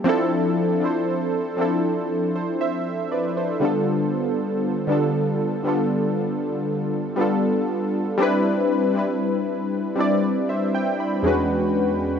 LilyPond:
\new Staff \with { instrumentName = "Synth keys" } { \time 4/4 \key c \major \tempo 4 = 59 << { r2 r16 <a' c''>16 <c'' e''>8 <b' d''>16 <a' c''>8 r16 | r1 | r2 <b' d''>16 <c'' e''>16 <e'' g''>16 <g'' b''>8 r8. | } \\ { <f c' d' e' a'>8 r16 <f c' d' e' c''>8 r16 <f c' d' e' a'>4. r8 <d g b d' f' a'>8~ | <d g b d' f' a'>8 r16 <d g b d' f' a'>8 r16 <d g b d' f' a'>4. <g b d' f' a'>8. r16 | <g c' d' e' b'>8 r16 <g c' d' e' b'>8. r16 <g c' d' e' d''>8 r8. <e, gis cis' d' fis' b'>8. r16 | } >> }